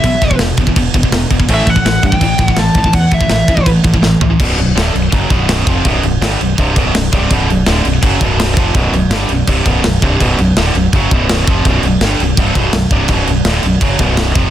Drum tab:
CC |x-x-x-x-x-x-x-x-|x-x-x-x-x-x-x-x-|x-x-x-x-x-x-----|x-x-x-x-x-x-x-x-|
SD |----o-------o---|----o-------o---|----o-------o---|----o-------o---|
FT |----------------|----------------|--------------o-|----------------|
BD |o-oo--ooo-oo--oo|o-oo--ooo-oo--oo|o-oo--ooo-oo----|o-------o-o---o-|

CC |x-x-x-x-x-x-x-x-|x-x-x-x-x-x-x-x-|x-x-x-x-x-x-x-x-|x-x-x-x-x-x-x-x-|
SD |----o-------o---|----o-------o---|----o-------o---|----o-------o---|
FT |----------------|----------------|----------------|----------------|
BD |o-------o-o---o-|o-------o-o---o-|o-------o-o---o-|o-------o-o---o-|

CC |x-x-x-x-x-x-x-x-|x-x-x-x-x-x-x-x-|
SD |----o-------o---|----o-------o---|
FT |----------------|----------------|
BD |o-------o-o---o-|o-------o-o---o-|